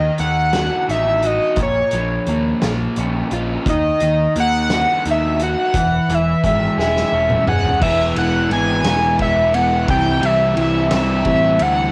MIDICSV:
0, 0, Header, 1, 5, 480
1, 0, Start_track
1, 0, Tempo, 692042
1, 1099, Time_signature, 6, 3, 24, 8
1, 8266, End_track
2, 0, Start_track
2, 0, Title_t, "Analog synth lead"
2, 0, Program_c, 0, 81
2, 0, Note_on_c, 0, 75, 108
2, 102, Note_off_c, 0, 75, 0
2, 137, Note_on_c, 0, 78, 116
2, 590, Note_off_c, 0, 78, 0
2, 629, Note_on_c, 0, 76, 99
2, 876, Note_on_c, 0, 75, 97
2, 886, Note_off_c, 0, 76, 0
2, 1108, Note_off_c, 0, 75, 0
2, 1128, Note_on_c, 0, 73, 94
2, 1808, Note_off_c, 0, 73, 0
2, 2563, Note_on_c, 0, 75, 105
2, 3006, Note_off_c, 0, 75, 0
2, 3052, Note_on_c, 0, 78, 117
2, 3491, Note_off_c, 0, 78, 0
2, 3543, Note_on_c, 0, 76, 94
2, 3748, Note_off_c, 0, 76, 0
2, 3770, Note_on_c, 0, 78, 112
2, 4262, Note_on_c, 0, 76, 97
2, 4272, Note_off_c, 0, 78, 0
2, 4481, Note_off_c, 0, 76, 0
2, 4486, Note_on_c, 0, 76, 98
2, 4699, Note_off_c, 0, 76, 0
2, 4718, Note_on_c, 0, 76, 98
2, 5164, Note_off_c, 0, 76, 0
2, 5191, Note_on_c, 0, 78, 102
2, 5411, Note_off_c, 0, 78, 0
2, 5426, Note_on_c, 0, 76, 118
2, 5649, Note_off_c, 0, 76, 0
2, 5677, Note_on_c, 0, 78, 102
2, 5894, Note_off_c, 0, 78, 0
2, 5914, Note_on_c, 0, 80, 127
2, 6361, Note_off_c, 0, 80, 0
2, 6395, Note_on_c, 0, 76, 101
2, 6618, Note_on_c, 0, 78, 104
2, 6628, Note_off_c, 0, 76, 0
2, 6860, Note_off_c, 0, 78, 0
2, 6868, Note_on_c, 0, 79, 122
2, 7110, Note_on_c, 0, 76, 103
2, 7120, Note_off_c, 0, 79, 0
2, 7345, Note_off_c, 0, 76, 0
2, 7359, Note_on_c, 0, 76, 102
2, 7573, Note_off_c, 0, 76, 0
2, 7601, Note_on_c, 0, 76, 104
2, 8059, Note_on_c, 0, 78, 107
2, 8069, Note_off_c, 0, 76, 0
2, 8266, Note_off_c, 0, 78, 0
2, 8266, End_track
3, 0, Start_track
3, 0, Title_t, "Overdriven electric guitar"
3, 0, Program_c, 1, 29
3, 0, Note_on_c, 1, 51, 65
3, 133, Note_on_c, 1, 58, 64
3, 370, Note_on_c, 1, 66, 69
3, 615, Note_on_c, 1, 63, 66
3, 850, Note_off_c, 1, 66, 0
3, 858, Note_on_c, 1, 66, 75
3, 1098, Note_off_c, 1, 63, 0
3, 1099, Note_off_c, 1, 51, 0
3, 1099, Note_off_c, 1, 66, 0
3, 1101, Note_on_c, 1, 46, 73
3, 1346, Note_on_c, 1, 53, 69
3, 1582, Note_off_c, 1, 58, 0
3, 1585, Note_on_c, 1, 58, 69
3, 1829, Note_on_c, 1, 65, 74
3, 2071, Note_on_c, 1, 61, 59
3, 2301, Note_off_c, 1, 65, 0
3, 2303, Note_off_c, 1, 46, 0
3, 2310, Note_on_c, 1, 65, 79
3, 2545, Note_off_c, 1, 58, 0
3, 2546, Note_off_c, 1, 53, 0
3, 2547, Note_off_c, 1, 65, 0
3, 2548, Note_off_c, 1, 61, 0
3, 2556, Note_on_c, 1, 51, 76
3, 2780, Note_off_c, 1, 51, 0
3, 2789, Note_on_c, 1, 51, 72
3, 3031, Note_on_c, 1, 58, 67
3, 3275, Note_on_c, 1, 66, 77
3, 3516, Note_on_c, 1, 63, 62
3, 3748, Note_off_c, 1, 66, 0
3, 3756, Note_on_c, 1, 66, 78
3, 3988, Note_off_c, 1, 51, 0
3, 3989, Note_off_c, 1, 58, 0
3, 3990, Note_on_c, 1, 52, 73
3, 3991, Note_off_c, 1, 63, 0
3, 3991, Note_off_c, 1, 66, 0
3, 4226, Note_off_c, 1, 52, 0
3, 4235, Note_on_c, 1, 52, 71
3, 4469, Note_on_c, 1, 56, 64
3, 4703, Note_on_c, 1, 68, 75
3, 4945, Note_on_c, 1, 61, 65
3, 5178, Note_off_c, 1, 68, 0
3, 5187, Note_on_c, 1, 68, 86
3, 5408, Note_off_c, 1, 52, 0
3, 5414, Note_off_c, 1, 56, 0
3, 5416, Note_on_c, 1, 52, 97
3, 5420, Note_off_c, 1, 61, 0
3, 5422, Note_on_c, 1, 59, 103
3, 5423, Note_on_c, 1, 56, 88
3, 5425, Note_off_c, 1, 68, 0
3, 5428, Note_on_c, 1, 64, 98
3, 5660, Note_off_c, 1, 56, 0
3, 5666, Note_off_c, 1, 52, 0
3, 5666, Note_off_c, 1, 59, 0
3, 5669, Note_on_c, 1, 52, 88
3, 5669, Note_on_c, 1, 56, 96
3, 5669, Note_on_c, 1, 59, 89
3, 5671, Note_off_c, 1, 64, 0
3, 5674, Note_on_c, 1, 64, 100
3, 5895, Note_off_c, 1, 56, 0
3, 5899, Note_off_c, 1, 52, 0
3, 5902, Note_on_c, 1, 52, 91
3, 5904, Note_off_c, 1, 59, 0
3, 5904, Note_on_c, 1, 56, 86
3, 5906, Note_off_c, 1, 64, 0
3, 5907, Note_on_c, 1, 59, 90
3, 5909, Note_on_c, 1, 64, 90
3, 6133, Note_off_c, 1, 56, 0
3, 6136, Note_off_c, 1, 52, 0
3, 6138, Note_off_c, 1, 59, 0
3, 6139, Note_on_c, 1, 52, 86
3, 6141, Note_off_c, 1, 64, 0
3, 6141, Note_on_c, 1, 56, 83
3, 6141, Note_on_c, 1, 59, 85
3, 6144, Note_on_c, 1, 64, 82
3, 6370, Note_off_c, 1, 56, 0
3, 6374, Note_off_c, 1, 52, 0
3, 6377, Note_on_c, 1, 52, 81
3, 6379, Note_off_c, 1, 59, 0
3, 6379, Note_on_c, 1, 56, 86
3, 6382, Note_off_c, 1, 64, 0
3, 6382, Note_on_c, 1, 59, 85
3, 6385, Note_on_c, 1, 64, 100
3, 6608, Note_off_c, 1, 56, 0
3, 6613, Note_off_c, 1, 52, 0
3, 6615, Note_off_c, 1, 59, 0
3, 6616, Note_on_c, 1, 52, 88
3, 6617, Note_on_c, 1, 56, 94
3, 6618, Note_on_c, 1, 59, 100
3, 6621, Note_off_c, 1, 64, 0
3, 6624, Note_on_c, 1, 64, 98
3, 6845, Note_off_c, 1, 56, 0
3, 6848, Note_on_c, 1, 48, 102
3, 6849, Note_off_c, 1, 52, 0
3, 6852, Note_on_c, 1, 52, 107
3, 6855, Note_off_c, 1, 59, 0
3, 6858, Note_on_c, 1, 55, 99
3, 6858, Note_on_c, 1, 60, 105
3, 6859, Note_off_c, 1, 64, 0
3, 6862, Note_on_c, 1, 64, 103
3, 7072, Note_off_c, 1, 48, 0
3, 7078, Note_off_c, 1, 55, 0
3, 7080, Note_on_c, 1, 48, 80
3, 7081, Note_off_c, 1, 60, 0
3, 7083, Note_off_c, 1, 52, 0
3, 7086, Note_off_c, 1, 64, 0
3, 7086, Note_on_c, 1, 52, 94
3, 7086, Note_on_c, 1, 55, 102
3, 7089, Note_on_c, 1, 60, 93
3, 7089, Note_on_c, 1, 64, 92
3, 7308, Note_off_c, 1, 48, 0
3, 7316, Note_off_c, 1, 52, 0
3, 7316, Note_off_c, 1, 55, 0
3, 7316, Note_on_c, 1, 48, 79
3, 7317, Note_off_c, 1, 60, 0
3, 7318, Note_on_c, 1, 52, 82
3, 7324, Note_on_c, 1, 55, 83
3, 7326, Note_off_c, 1, 64, 0
3, 7326, Note_on_c, 1, 60, 84
3, 7329, Note_on_c, 1, 64, 92
3, 7553, Note_off_c, 1, 48, 0
3, 7558, Note_off_c, 1, 52, 0
3, 7558, Note_off_c, 1, 60, 0
3, 7559, Note_off_c, 1, 55, 0
3, 7561, Note_on_c, 1, 48, 76
3, 7561, Note_on_c, 1, 52, 84
3, 7566, Note_on_c, 1, 60, 82
3, 7567, Note_off_c, 1, 64, 0
3, 7567, Note_on_c, 1, 55, 94
3, 7570, Note_on_c, 1, 64, 96
3, 7792, Note_off_c, 1, 48, 0
3, 7800, Note_on_c, 1, 48, 81
3, 7801, Note_off_c, 1, 55, 0
3, 7802, Note_off_c, 1, 60, 0
3, 7803, Note_off_c, 1, 52, 0
3, 7806, Note_on_c, 1, 52, 90
3, 7808, Note_off_c, 1, 64, 0
3, 7810, Note_on_c, 1, 55, 84
3, 7811, Note_on_c, 1, 60, 86
3, 7811, Note_on_c, 1, 64, 91
3, 8032, Note_off_c, 1, 48, 0
3, 8040, Note_off_c, 1, 55, 0
3, 8040, Note_off_c, 1, 60, 0
3, 8040, Note_on_c, 1, 48, 88
3, 8041, Note_off_c, 1, 52, 0
3, 8043, Note_on_c, 1, 52, 98
3, 8049, Note_off_c, 1, 64, 0
3, 8049, Note_on_c, 1, 55, 106
3, 8049, Note_on_c, 1, 60, 95
3, 8052, Note_on_c, 1, 64, 96
3, 8266, Note_off_c, 1, 48, 0
3, 8266, Note_off_c, 1, 52, 0
3, 8266, Note_off_c, 1, 55, 0
3, 8266, Note_off_c, 1, 60, 0
3, 8266, Note_off_c, 1, 64, 0
3, 8266, End_track
4, 0, Start_track
4, 0, Title_t, "Picked electric bass"
4, 0, Program_c, 2, 34
4, 135, Note_on_c, 2, 39, 86
4, 476, Note_off_c, 2, 39, 0
4, 616, Note_on_c, 2, 33, 81
4, 957, Note_off_c, 2, 33, 0
4, 1085, Note_on_c, 2, 34, 89
4, 1260, Note_off_c, 2, 34, 0
4, 1338, Note_on_c, 2, 34, 81
4, 1509, Note_off_c, 2, 34, 0
4, 1576, Note_on_c, 2, 39, 82
4, 1748, Note_off_c, 2, 39, 0
4, 1817, Note_on_c, 2, 34, 87
4, 1989, Note_off_c, 2, 34, 0
4, 2063, Note_on_c, 2, 34, 85
4, 2232, Note_off_c, 2, 34, 0
4, 2300, Note_on_c, 2, 34, 94
4, 2471, Note_off_c, 2, 34, 0
4, 2539, Note_on_c, 2, 39, 93
4, 2710, Note_off_c, 2, 39, 0
4, 2784, Note_on_c, 2, 39, 82
4, 2953, Note_off_c, 2, 39, 0
4, 3023, Note_on_c, 2, 39, 94
4, 3363, Note_off_c, 2, 39, 0
4, 3507, Note_on_c, 2, 39, 89
4, 3846, Note_off_c, 2, 39, 0
4, 3981, Note_on_c, 2, 28, 95
4, 4152, Note_off_c, 2, 28, 0
4, 4222, Note_on_c, 2, 28, 84
4, 4393, Note_off_c, 2, 28, 0
4, 4464, Note_on_c, 2, 32, 93
4, 4634, Note_off_c, 2, 32, 0
4, 4701, Note_on_c, 2, 28, 99
4, 4872, Note_off_c, 2, 28, 0
4, 4941, Note_on_c, 2, 28, 87
4, 5112, Note_off_c, 2, 28, 0
4, 5180, Note_on_c, 2, 28, 90
4, 5352, Note_off_c, 2, 28, 0
4, 5421, Note_on_c, 2, 28, 89
4, 5642, Note_off_c, 2, 28, 0
4, 5656, Note_on_c, 2, 28, 82
4, 5879, Note_off_c, 2, 28, 0
4, 5892, Note_on_c, 2, 32, 89
4, 6117, Note_off_c, 2, 32, 0
4, 6130, Note_on_c, 2, 28, 92
4, 6356, Note_off_c, 2, 28, 0
4, 6378, Note_on_c, 2, 28, 87
4, 6832, Note_off_c, 2, 28, 0
4, 6854, Note_on_c, 2, 36, 95
4, 7077, Note_off_c, 2, 36, 0
4, 7091, Note_on_c, 2, 36, 88
4, 7315, Note_off_c, 2, 36, 0
4, 7334, Note_on_c, 2, 36, 91
4, 7556, Note_off_c, 2, 36, 0
4, 7575, Note_on_c, 2, 36, 96
4, 7796, Note_off_c, 2, 36, 0
4, 7806, Note_on_c, 2, 33, 83
4, 8031, Note_off_c, 2, 33, 0
4, 8051, Note_on_c, 2, 38, 90
4, 8266, Note_off_c, 2, 38, 0
4, 8266, End_track
5, 0, Start_track
5, 0, Title_t, "Drums"
5, 124, Note_on_c, 9, 42, 67
5, 194, Note_off_c, 9, 42, 0
5, 366, Note_on_c, 9, 42, 85
5, 368, Note_on_c, 9, 38, 102
5, 435, Note_off_c, 9, 42, 0
5, 438, Note_off_c, 9, 38, 0
5, 619, Note_on_c, 9, 42, 63
5, 688, Note_off_c, 9, 42, 0
5, 849, Note_on_c, 9, 42, 63
5, 918, Note_off_c, 9, 42, 0
5, 1082, Note_on_c, 9, 42, 87
5, 1089, Note_on_c, 9, 36, 110
5, 1151, Note_off_c, 9, 42, 0
5, 1158, Note_off_c, 9, 36, 0
5, 1324, Note_on_c, 9, 42, 64
5, 1394, Note_off_c, 9, 42, 0
5, 1571, Note_on_c, 9, 42, 59
5, 1640, Note_off_c, 9, 42, 0
5, 1814, Note_on_c, 9, 42, 79
5, 1816, Note_on_c, 9, 38, 107
5, 1884, Note_off_c, 9, 42, 0
5, 1886, Note_off_c, 9, 38, 0
5, 2054, Note_on_c, 9, 42, 62
5, 2124, Note_off_c, 9, 42, 0
5, 2296, Note_on_c, 9, 42, 66
5, 2365, Note_off_c, 9, 42, 0
5, 2539, Note_on_c, 9, 36, 102
5, 2541, Note_on_c, 9, 42, 87
5, 2608, Note_off_c, 9, 36, 0
5, 2611, Note_off_c, 9, 42, 0
5, 2775, Note_on_c, 9, 42, 69
5, 2844, Note_off_c, 9, 42, 0
5, 3021, Note_on_c, 9, 42, 67
5, 3090, Note_off_c, 9, 42, 0
5, 3258, Note_on_c, 9, 42, 91
5, 3260, Note_on_c, 9, 38, 108
5, 3327, Note_off_c, 9, 42, 0
5, 3329, Note_off_c, 9, 38, 0
5, 3505, Note_on_c, 9, 42, 68
5, 3574, Note_off_c, 9, 42, 0
5, 3742, Note_on_c, 9, 42, 68
5, 3811, Note_off_c, 9, 42, 0
5, 3980, Note_on_c, 9, 42, 101
5, 3981, Note_on_c, 9, 36, 106
5, 4049, Note_off_c, 9, 42, 0
5, 4051, Note_off_c, 9, 36, 0
5, 4228, Note_on_c, 9, 42, 71
5, 4297, Note_off_c, 9, 42, 0
5, 4465, Note_on_c, 9, 36, 78
5, 4467, Note_on_c, 9, 42, 74
5, 4534, Note_off_c, 9, 36, 0
5, 4536, Note_off_c, 9, 42, 0
5, 4712, Note_on_c, 9, 38, 61
5, 4781, Note_off_c, 9, 38, 0
5, 4831, Note_on_c, 9, 38, 58
5, 4900, Note_off_c, 9, 38, 0
5, 5063, Note_on_c, 9, 47, 76
5, 5132, Note_off_c, 9, 47, 0
5, 5184, Note_on_c, 9, 45, 96
5, 5253, Note_off_c, 9, 45, 0
5, 5302, Note_on_c, 9, 43, 80
5, 5372, Note_off_c, 9, 43, 0
5, 5422, Note_on_c, 9, 36, 108
5, 5423, Note_on_c, 9, 49, 119
5, 5491, Note_off_c, 9, 36, 0
5, 5492, Note_off_c, 9, 49, 0
5, 5662, Note_on_c, 9, 51, 75
5, 5731, Note_off_c, 9, 51, 0
5, 5904, Note_on_c, 9, 51, 73
5, 5973, Note_off_c, 9, 51, 0
5, 6135, Note_on_c, 9, 51, 99
5, 6137, Note_on_c, 9, 38, 111
5, 6204, Note_off_c, 9, 51, 0
5, 6206, Note_off_c, 9, 38, 0
5, 6374, Note_on_c, 9, 51, 67
5, 6376, Note_on_c, 9, 36, 80
5, 6443, Note_off_c, 9, 51, 0
5, 6446, Note_off_c, 9, 36, 0
5, 6617, Note_on_c, 9, 51, 75
5, 6686, Note_off_c, 9, 51, 0
5, 6854, Note_on_c, 9, 51, 101
5, 6856, Note_on_c, 9, 36, 110
5, 6924, Note_off_c, 9, 51, 0
5, 6926, Note_off_c, 9, 36, 0
5, 7094, Note_on_c, 9, 51, 76
5, 7164, Note_off_c, 9, 51, 0
5, 7330, Note_on_c, 9, 51, 80
5, 7399, Note_off_c, 9, 51, 0
5, 7565, Note_on_c, 9, 51, 100
5, 7567, Note_on_c, 9, 38, 117
5, 7634, Note_off_c, 9, 51, 0
5, 7636, Note_off_c, 9, 38, 0
5, 7801, Note_on_c, 9, 51, 74
5, 7805, Note_on_c, 9, 36, 75
5, 7870, Note_off_c, 9, 51, 0
5, 7874, Note_off_c, 9, 36, 0
5, 8040, Note_on_c, 9, 51, 77
5, 8109, Note_off_c, 9, 51, 0
5, 8266, End_track
0, 0, End_of_file